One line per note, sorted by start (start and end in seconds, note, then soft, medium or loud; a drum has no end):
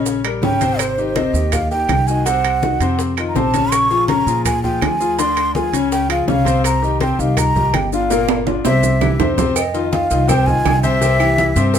0.00 0.38 A#1 medium
0.00 0.18 C#3 medium
0.00 0.18 C#4 medium
0.00 0.18 C#5 medium
0.06 high bongo medium
0.06 high conga soft
0.06 maracas medium
0.24 0.40 G3 medium
0.24 0.40 G4 medium
0.24 0.40 A#4 medium
0.24 high bongo soft
0.24 high conga soft
0.24 high timbale medium
0.24 claves medium
0.24 maracas soft
0.42 1.28 G#1 medium
0.42 0.58 C#3 medium
0.42 0.58 C#4 medium
0.42 0.58 C#5 medium
0.42 0.81 G5 loud
0.42 high bongo soft
0.42 low bongo medium
0.42 high conga medium
0.42 low timbale medium
0.42 maracas soft
0.61 0.91 C3 medium
0.61 0.91 C4 medium
0.61 0.91 C5 medium
0.61 high bongo soft
0.61 high conga medium
0.61 high timbale medium
0.61 maracas medium
0.79 1.18 C5 medium
0.79 high bongo medium
0.79 high conga soft
0.79 high timbale medium
0.79 claves medium
0.79 maracas medium
0.98 1.13 D#3 medium
0.98 1.13 D#4 medium
0.98 1.13 G4 medium
0.98 high bongo soft
0.98 high conga soft
0.98 maracas soft
1.16 1.31 C3 medium
1.16 1.31 C4 medium
1.16 1.31 C5 medium
1.16 1.54 D#5 medium
1.16 high bongo medium
1.16 high conga loud
1.16 high timbale medium
1.16 low timbale medium
1.16 maracas soft
1.33 1.85 D#2 medium
1.33 1.64 D#3 medium
1.33 1.65 D#4 medium
1.33 1.65 G4 medium
1.33 high conga soft
1.33 maracas medium
1.52 1.70 F5 medium
1.52 high bongo medium
1.52 high conga soft
1.52 low conga medium
1.52 high timbale medium
1.52 claves medium
1.52 maracas medium
1.71 2.01 D#3 medium
1.71 2.01 D#4 medium
1.71 2.01 G4 medium
1.71 2.08 G5 loud
1.71 high bongo soft
1.71 high conga soft
1.71 maracas soft
1.88 2.74 C2 medium
1.88 high bongo soft
1.88 low bongo medium
1.88 high conga medium
1.88 high timbale medium
1.88 low timbale medium
1.88 claves medium
1.88 maracas soft
2.07 2.23 D#3 medium
2.07 2.23 D#4 medium
2.07 2.23 F#4 medium
2.07 2.27 G#5 loud
2.07 high bongo soft
2.07 high conga soft
2.07 maracas medium
2.26 2.56 C3 medium
2.26 2.56 C4 medium
2.26 2.56 C5 medium
2.26 2.99 F#5 medium
2.26 high bongo medium
2.26 high conga soft
2.26 high timbale medium
2.26 maracas medium
2.44 high bongo soft
2.44 high conga soft
2.44 high timbale loud
2.44 claves medium
2.44 maracas soft
2.62 2.77 D#3 medium
2.62 2.77 D#4 medium
2.62 2.78 F#4 medium
2.62 high bongo medium
2.62 high conga loud
2.62 low timbale medium
2.62 maracas soft
2.80 3.31 F2 medium
2.80 3.11 C3 medium
2.80 3.11 C4 medium
2.80 3.11 C5 medium
2.80 high conga soft
2.80 high timbale medium
2.80 maracas medium
2.99 high bongo medium
2.99 high conga soft
2.99 maracas medium
3.17 3.32 D#3 medium
3.17 3.33 D#4 medium
3.17 3.33 F4 medium
3.17 high bongo soft
3.17 high conga soft
3.17 high timbale medium
3.17 claves medium
3.17 maracas soft
3.28 3.37 A#5 medium
3.35 4.21 A#1 medium
3.35 3.51 C3 medium
3.35 3.51 C4 medium
3.35 3.51 C5 medium
3.35 3.73 A5 medium
3.35 high bongo soft
3.35 low bongo medium
3.35 high conga medium
3.35 low timbale medium
3.35 maracas soft
3.54 3.84 C#3 medium
3.54 3.84 C#4 medium
3.54 3.84 C#5 medium
3.54 high bongo soft
3.54 high conga medium
3.54 high timbale medium
3.54 maracas medium
3.71 4.07 C#6 medium
3.71 high bongo medium
3.71 high conga soft
3.71 high timbale medium
3.71 claves medium
3.71 maracas medium
3.90 4.05 F3 medium
3.90 4.06 F4 medium
3.90 4.06 G#4 medium
3.90 high bongo soft
3.90 high conga soft
3.90 maracas soft
4.08 4.23 C#3 medium
4.08 4.24 C#4 medium
4.08 4.24 C#5 medium
4.08 4.42 A#5 medium
4.08 high bongo medium
4.08 high conga loud
4.08 high timbale medium
4.08 low timbale medium
4.08 maracas soft
4.26 4.78 A#2 medium
4.26 4.57 F3 medium
4.26 4.57 F4 medium
4.26 4.57 G#4 medium
4.26 high conga soft
4.26 maracas medium
4.45 4.62 G#5 loud
4.45 high bongo medium
4.45 high conga soft
4.45 low conga medium
4.45 high timbale medium
4.45 claves medium
4.45 maracas medium
4.63 4.93 F3 medium
4.63 4.94 F4 medium
4.63 4.94 G#4 medium
4.63 4.84 G5 medium
4.63 high bongo soft
4.63 high conga soft
4.63 low conga medium
4.63 maracas soft
4.82 5.67 D2 medium
4.82 5.20 G#5 loud
4.82 high bongo soft
4.82 low bongo medium
4.82 high conga medium
4.82 high timbale medium
4.82 low timbale medium
4.82 claves medium
4.82 maracas soft
5.00 5.15 F3 medium
5.00 5.15 F4 medium
5.00 5.15 G#4 medium
5.00 high bongo soft
5.00 high conga soft
5.00 maracas medium
5.18 5.48 D3 medium
5.18 5.49 D4 medium
5.18 5.49 D5 medium
5.18 5.54 C6 medium
5.18 high bongo medium
5.18 high conga soft
5.18 high timbale medium
5.18 maracas medium
5.37 high bongo soft
5.37 high conga soft
5.37 high timbale medium
5.37 claves medium
5.37 maracas soft
5.55 5.70 F3 medium
5.55 5.70 F4 medium
5.55 5.70 G#4 medium
5.55 5.89 G#5 medium
5.55 high bongo medium
5.55 high conga medium
5.55 low timbale medium
5.55 maracas soft
5.73 6.24 C#2 medium
5.73 6.03 C#3 medium
5.73 6.03 C#4 medium
5.73 6.03 C#5 medium
5.73 high conga soft
5.73 high timbale medium
5.73 maracas medium
5.91 6.09 G5 loud
5.91 high bongo medium
5.91 high conga soft
5.91 maracas medium
6.09 6.24 F3 medium
6.09 6.24 F4 medium
6.09 6.25 G#4 medium
6.09 6.27 F5 medium
6.09 high bongo soft
6.09 high conga soft
6.09 high timbale medium
6.09 claves medium
6.09 maracas soft
6.27 7.13 C2 medium
6.27 6.43 C#3 medium
6.27 6.43 C#4 medium
6.27 6.43 C#5 medium
6.27 6.62 F5 medium
6.27 high bongo soft
6.27 low bongo medium
6.27 high conga medium
6.27 low timbale medium
6.27 maracas soft
6.45 6.75 C3 medium
6.45 6.76 C4 medium
6.45 6.76 C5 medium
6.45 high bongo soft
6.45 high conga medium
6.45 high timbale medium
6.45 maracas medium
6.64 6.99 A#5 medium
6.64 high bongo medium
6.64 high timbale medium
6.64 claves medium
6.64 maracas medium
6.82 6.97 D#3 medium
6.82 6.97 D#4 medium
6.82 6.97 G4 medium
6.82 high bongo soft
6.82 high conga soft
6.82 maracas soft
7.00 7.16 C3 medium
7.00 7.16 C4 medium
7.00 7.16 C5 medium
7.00 7.21 G5 medium
7.00 high bongo medium
7.00 high conga medium
7.00 high timbale medium
7.00 low timbale medium
7.00 maracas soft
7.18 7.70 C2 medium
7.18 7.49 D#3 medium
7.18 7.49 D#4 medium
7.18 7.49 G4 medium
7.18 7.39 F5 medium
7.18 high conga soft
7.18 maracas medium
7.37 7.76 A#5 loud
7.37 high bongo medium
7.37 high conga soft
7.37 low conga medium
7.37 high timbale medium
7.37 claves medium
7.37 maracas medium
7.55 7.86 D#3 medium
7.55 7.86 D#4 medium
7.55 7.86 G4 medium
7.55 high bongo soft
7.55 high conga soft
7.55 low conga medium
7.55 maracas soft
7.73 8.59 G1 medium
7.73 7.92 G5 medium
7.73 high bongo soft
7.73 low bongo medium
7.73 high conga medium
7.73 high timbale medium
7.73 low timbale medium
7.73 claves medium
7.73 maracas soft
7.92 8.07 D3 medium
7.92 8.07 D4 medium
7.92 8.08 F4 medium
7.92 8.35 F5 medium
7.92 high bongo soft
7.92 high conga soft
7.92 maracas medium
8.10 8.40 A#2 medium
8.10 8.40 A#3 medium
8.10 8.41 A#4 medium
8.10 high bongo medium
8.10 high conga soft
8.10 high timbale medium
8.10 maracas medium
8.28 high bongo medium
8.28 high conga soft
8.28 high timbale loud
8.28 claves medium
8.28 maracas soft
8.46 8.61 D3 medium
8.46 8.62 D4 medium
8.46 8.62 F4 medium
8.46 high conga medium
8.46 high timbale medium
8.46 maracas soft
8.64 9.16 C2 medium
8.64 8.95 C3 medium
8.64 8.95 C4 medium
8.64 8.95 C5 medium
8.64 9.34 E5 medium
8.64 low bongo medium
8.64 high conga soft
8.64 high timbale medium
8.64 maracas medium
8.83 high conga medium
8.83 low timbale medium
8.83 maracas medium
9.01 9.16 E3 medium
9.01 9.16 E4 medium
9.01 9.17 G4 medium
9.01 low bongo medium
9.01 high conga medium
9.01 low timbale medium
9.01 claves medium
9.01 maracas soft
9.19 10.05 F2 medium
9.19 9.34 C3 medium
9.19 9.35 C4 medium
9.19 9.35 C5 medium
9.19 low bongo medium
9.19 low conga medium
9.19 low timbale medium
9.19 maracas soft
9.37 9.53 C3 medium
9.37 9.53 C4 medium
9.37 9.53 C5 medium
9.37 low bongo medium
9.37 low conga medium
9.37 low timbale loud
9.37 maracas medium
9.56 9.90 D#5 medium
9.56 cowbell loud
9.56 high conga soft
9.56 low agogo loud
9.56 claves medium
9.56 maracas medium
9.74 10.04 D#3 medium
9.74 10.04 D#4 medium
9.74 10.04 F4 medium
9.74 cowbell medium
9.74 high conga soft
9.74 maracas soft
9.92 10.29 F5 loud
9.92 cowbell medium
9.92 high conga loud
9.92 low timbale medium
9.92 low agogo medium
9.92 maracas soft
10.10 10.62 C2 medium
10.10 10.25 D#3 medium
10.10 10.26 D#4 medium
10.10 10.26 F4 medium
10.10 cowbell medium
10.10 high conga soft
10.10 maracas medium
10.28 10.43 C3 medium
10.28 10.44 C4 medium
10.28 10.44 C5 medium
10.28 10.48 G5 loud
10.28 cowbell loud
10.28 high conga soft
10.28 low conga medium
10.28 low agogo medium
10.28 claves medium
10.28 maracas medium
10.46 10.77 D#3 medium
10.46 10.77 D#4 medium
10.46 10.77 F4 medium
10.46 10.82 G#5 loud
10.46 high conga soft
10.46 low conga medium
10.46 maracas soft
10.65 11.50 C2 medium
10.65 cowbell medium
10.65 high conga medium
10.65 low timbale medium
10.65 low agogo loud
10.65 claves medium
10.65 maracas soft
10.83 10.98 C3 medium
10.83 10.98 C4 medium
10.83 10.99 C5 loud
10.83 11.79 E5 loud
10.83 high conga medium
10.83 maracas medium
11.01 11.16 C3 loud
11.01 11.17 C4 medium
11.01 11.17 C5 medium
11.01 cowbell medium
11.01 high conga soft
11.01 low agogo medium
11.01 maracas medium
11.20 11.50 E3 medium
11.20 11.50 E4 medium
11.20 11.50 G4 medium
11.20 low agogo loud
11.20 claves medium
11.20 maracas soft
11.38 cowbell medium
11.38 high conga loud
11.38 low timbale medium
11.38 maracas soft
11.56 11.79 G2 loud
11.56 11.79 C3 medium
11.56 11.79 C4 medium
11.56 11.79 C5 medium
11.56 cowbell medium
11.56 low agogo medium
11.56 maracas medium
11.74 cowbell loud
11.74 high conga soft
11.74 low agogo medium
11.74 maracas loud